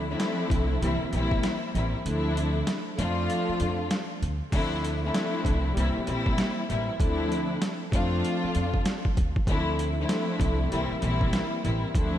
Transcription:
Already playing: upright bass D2
0.09 string section F3 A3 C4 D4 E4
0.20 snare, closed hi-hat
0.50 upright bass C2, kick, closed hi-hat
0.80 upright bass C2, string section E3 G3 A#3 C4 E4, closed hi-hat
1.01 muted upright bass stroke
1.10 upright bass A#1, string section E3 G3 A#3 C4 E4, closed hi-hat
1.31 kick
1.43 snare, closed hi-hat
1.73 upright bass A1, string section E3 G3 A#3 C4 E4, closed hi-hat
2.04 upright bass D2, string section F3 A3 C4 D4 E4, closed hi-hat
2.37 closed hi-hat
2.67 snare, closed hi-hat
2.96 upright bass F2, string section F3 A3 C4 D4 F4, closed hi-hat
3.30 closed hi-hat
3.49 muted upright bass stroke
3.60 upright bass F2, closed hi-hat
3.91 snare, closed hi-hat
4.22 upright bass D2, closed hi-hat
4.51 upright bass D2, string section F3 A3 C4 D4 E4, kick, closed hi-hat, crash
4.84 closed hi-hat
5.03 string section F3 A3 C4 D4 E4
5.14 snare, closed hi-hat
5.45 upright bass C2, kick, closed hi-hat
5.74 upright bass C2, string section E3 G3 A#3 C4 E4, closed hi-hat
5.96 muted upright bass stroke
6.05 upright bass A#1, string section E3 G3 A#3 C4 E4, closed hi-hat
6.26 kick
6.38 snare, closed hi-hat
6.68 upright bass A1, string section E3 G3 A#3 C4 E4, closed hi-hat
6.99 upright bass D2, string section F3 A3 C4 D4 E4, kick, closed hi-hat
7.32 closed hi-hat
7.62 snare, closed hi-hat
7.90 upright bass F2, string section F3 A3 C4 D4 F4, kick, closed hi-hat
8.25 closed hi-hat
8.44 muted upright bass stroke
8.55 upright bass F2, closed hi-hat
8.74 kick
8.85 snare, closed hi-hat
9.05 kick
9.17 upright bass D2, kick, closed hi-hat
9.36 kick
9.46 upright bass D2, string section F3 A3 C4 D4 E4, kick, closed hi-hat
9.79 closed hi-hat
9.98 string section F3 A3 C4 D4 E4
10.09 snare, closed hi-hat
10.40 upright bass C2, kick, closed hi-hat
10.70 upright bass C2, string section E3 G3 A#3 C4 E4, closed hi-hat
10.91 muted upright bass stroke
10.99 upright bass A#1, string section E3 G3 A#3 C4 E4, closed hi-hat
11.21 kick
11.33 snare, closed hi-hat
11.63 upright bass A1, string section E3 G3 A#3 C4 E4, closed hi-hat
11.94 upright bass D2, string section F3 A3 C4 D4 E4, kick, closed hi-hat

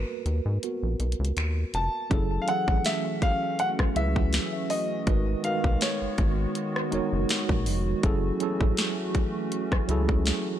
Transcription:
Already playing: tine electric piano A#3 B3 F#4 A#4 B4
0.26 analog synth bass D#2, closed hi-hat
0.46 analog synth bass G#2
0.63 tine electric piano B3 F#4 A#4, closed hi-hat
0.83 analog synth bass A#1
1.00 analog synth bass B1, closed hi-hat
1.12 closed hi-hat
1.19 analog synth bass C#2
1.25 closed hi-hat
1.37 analog synth bass D#2, finger snap, closed hi-hat
1.74 analog synth bass F1, grand piano A5, closed hi-hat
2.10 analog synth bass F#1, analog synth pad E3 A3 C#4 F#4, tine electric piano F#3 C#4 E4 G#4 A4, kick, closed hi-hat
2.42 grand piano F5
2.47 tine electric piano E3 F#3 C#4 G#4 A4, grand piano F#5, closed hi-hat
2.68 analog synth bass A1, kick
2.85 grand piano E5, snare, closed hi-hat
3.22 grand piano F5, kick, closed hi-hat
3.59 grand piano F#5, closed hi-hat
3.79 analog synth bass C#2, kick, cross-stick
3.95 analog synth bass C#2, tine electric piano F#3 C#4 E4 G#4 B4, grand piano E5, closed hi-hat
4.16 kick
4.33 snare, closed hi-hat
4.70 grand piano D#5, open hi-hat
5.06 analog synth bass G#1, analog synth pad D#3 G#3 B3, tine electric piano G#3 D#4 F#4 A#4 B4, kick, closed hi-hat
5.43 tine electric piano G#3 D#4 F#4 A#4 B4, grand piano F5, closed hi-hat
5.64 analog synth bass B1, kick
5.81 grand piano C#5, snare, closed hi-hat
6.01 analog synth bass G#1
6.18 analog synth bass G#1, kick, closed hi-hat
6.55 closed hi-hat
6.76 cross-stick
6.91 analog synth bass F#1, tine electric piano G#3 D#4 F#4 A#4 C#5, closed hi-hat
7.13 analog synth bass F#1
7.29 snare, closed hi-hat
7.49 analog synth bass A#1, kick
7.66 analog synth bass F1, open hi-hat
8.02 analog synth bass F#1, analog synth pad E3 A3 C#4, tine electric piano F#3 C#4 E4 G#4 A4, kick, closed hi-hat
8.40 tine electric piano F#3 C#4 E4 G#4 A4, closed hi-hat
8.61 analog synth bass A1, kick
8.77 snare, closed hi-hat
9.15 kick, closed hi-hat
9.52 closed hi-hat
9.72 analog synth bass C#2, kick, cross-stick
9.88 analog synth bass C#2, tine electric piano F#3 C#4 E4 G#4 A4, closed hi-hat
10.09 kick
10.26 snare, closed hi-hat

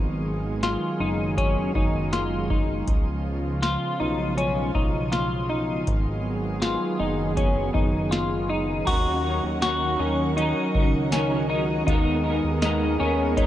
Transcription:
Already playing: analog synth bass G#1, analog synth pad D#3 F#3 G#3 B3 G#4
0.63 clean electric guitar F4, snare, closed hi-hat
1.00 analog synth bass F#1, clean electric guitar D#4
1.38 clean electric guitar C#4, kick, closed hi-hat
1.75 analog synth bass F#1, clean electric guitar D#4, kick
2.13 clean electric guitar F4, snare, closed hi-hat
2.50 clean electric guitar D#4, kick
2.88 analog synth bass C#2, analog synth pad C#3 F3 F4, kick, closed hi-hat
3.62 clean electric guitar F4, snare, closed hi-hat
4.00 analog synth bass B1, clean electric guitar D#4
4.37 clean electric guitar C#4, closed hi-hat
4.75 analog synth bass B1, clean electric guitar D#4, kick
5.12 clean electric guitar F4, snare, closed hi-hat
5.49 clean electric guitar D#4
5.87 analog synth bass G#1, analog synth pad D#3 F#3 B3 G#4, kick, closed hi-hat
6.62 clean electric guitar F4, snare, closed hi-hat
7.00 analog synth bass F#1, clean electric guitar D#4
7.37 clean electric guitar C#4, kick, closed hi-hat
7.74 analog synth bass F#1, clean electric guitar D#4, kick
8.11 clean electric guitar F4, snare, closed hi-hat
8.49 clean electric guitar D#4
8.85 analog synth bass D#2, clean electric guitar D#3 F#3 C#4 F#4, analog synth pad D#3 F#3 C#4 F#4 A#4, celesta A#5, kick, closed hi-hat, crash
8.89 clean electric guitar D#4 A#4
9.23 clean electric guitar D#4 A#4
9.29 clean electric guitar C#4
9.43 analog synth bass D#2
9.62 clean electric guitar D#3 F#3 C#4 D#4 F#4, snare, closed hi-hat, tambourine
9.66 clean electric guitar A#4
9.98 analog synth bass D#2, clean electric guitar C#4 D#4 A#4
10.04 clean electric guitar C#4
10.36 clean electric guitar F#3 C#4 D#4, closed hi-hat
10.40 clean electric guitar D#4 A#4
10.74 analog synth bass C#2, clean electric guitar D#4 A#4, kick
10.79 clean electric guitar C#4
11.12 clean electric guitar D#3 F#3 C#4 D#4 A#4, snare, closed hi-hat, tambourine
11.49 clean electric guitar D#4 A#4
11.54 clean electric guitar C#4
11.86 analog synth bass D#2, clean electric guitar D#3 G#3 B3 D#4, analog synth pad G#3 B3 G#4, celesta F5, kick, closed hi-hat
11.91 clean electric guitar A#4
12.24 clean electric guitar D#4 A#4
12.29 clean electric guitar B3
12.44 analog synth bass D#2
12.61 clean electric guitar D#3 G#3 B3 D#4, snare, closed hi-hat, tambourine
12.65 clean electric guitar A#4
12.99 analog synth bass D#2, clean electric guitar C#4 D#4 A#4
13.04 clean electric guitar B3
13.36 clean electric guitar G#3 B3 D#4, celesta C#5, kick, closed hi-hat
13.40 clean electric guitar D#4 A#4

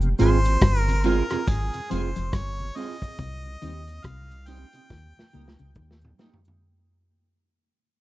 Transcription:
Already playing: sub bass F1
0.01 tonewheel organ F2 C3, cabasa
0.19 sub bass G#1, clean electric guitar G#2 C4 F4 G#4, tonewheel organ G#3 C4 F4, harmonica C5, closed hi-hat, cabasa
0.45 closed hi-hat, cabasa
0.61 sub bass G1, clean electric guitar G2, kick, cross-stick, closed hi-hat, cabasa
0.78 harmonica A#4
0.88 tonewheel organ F2 C3, closed hi-hat, cabasa
1.04 tonewheel organ G#3 C4 F4, clean electric guitar C4 F4 G#4, harmonica A#4, closed hi-hat, cabasa
1.30 tonewheel organ F2 C3, clean electric guitar C4 F4 G#4, cross-stick, closed hi-hat, cabasa
1.47 sub bass G#1, clean electric guitar G#2, harmonica G#4, kick, closed hi-hat, cabasa
1.74 tonewheel organ F2 C3, closed hi-hat, cabasa
1.90 sub bass F1, clean electric guitar F2 C4 F4 G#4, tonewheel organ G#3 C4 F4, harmonica C5, closed hi-hat, cabasa
2.16 sub bass F1, clean electric guitar F2, closed hi-hat, cabasa
2.33 sub bass G1, clean electric guitar G2, harmonica C#5, kick, cross-stick, closed hi-hat, cabasa
2.59 tonewheel organ F2 C3, cabasa
2.76 tonewheel organ G#3 C4 F4, clean electric guitar C4 F4 G#4, harmonica D#5, open hi-hat, cabasa
3.02 kick, cabasa
3.19 sub bass C2, clean electric guitar C3, kick, closed hi-hat, cabasa
3.45 tonewheel organ C3, cabasa
3.62 sub bass D#2, clean electric guitar D#3 C4 D#4 G4, tonewheel organ G3 C4 D#4, closed hi-hat, cabasa
3.88 closed hi-hat, cabasa
4.04 sub bass C2, clean electric guitar C3, harmonica F5, kick, cross-stick, closed hi-hat, cabasa
4.30 tonewheel organ C3, closed hi-hat, cabasa
4.46 tonewheel organ G3 C4 D#4, clean electric guitar C4 D#4 G4, harmonica G5, closed hi-hat, cabasa
4.73 tonewheel organ C3, clean electric guitar C4 D#4 G4, closed hi-hat, cabasa
4.90 sub bass D#2, clean electric guitar D#3, kick, snare, cabasa
5.16 tonewheel organ D#2 A#2, snare, cabasa
5.33 sub bass C#2, clean electric guitar C#3 A#3 D#4 G4, tonewheel organ G3 A#3 D#4, cabasa
5.48 snare
5.59 sub bass C#2, clean electric guitar C#3, cabasa
5.75 sub bass D#2, clean electric guitar D#3, kick, mid tom, cabasa
5.91 snare
6.01 tonewheel organ D#2 A#2, mid tom, cabasa
6.18 tonewheel organ G3 A#3 D#4, clean electric guitar A#3 D#4 G4, snare, cabasa
6.34 floor tom
6.45 floor tom, cabasa

